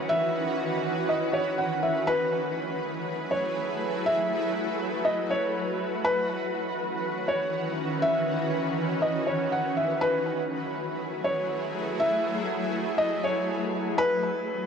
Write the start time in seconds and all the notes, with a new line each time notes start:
Already playing: D#3 E3 C#4 F#4 B4
0.09 E5
1.09 D#5
1.33 C#5
1.58 F#5
1.83 E5
2.07 F#3 A3 E4 G#4 B4
3.31 C#5
4.06 F#4 E5
5.05 D#5
5.30 C#5
6.04 D#3 E3 C#4 B4
7.28 C#5
8.02 E5
9.02 D#5
9.27 C#5
9.52 F#5
9.77 E5
10.01 F#3 A3 E4 G#4 B4
11.24 C#5
11.99 E5
12.98 D#5
13.24 C#5
13.97 D#3 E3 C#4 F#4 B4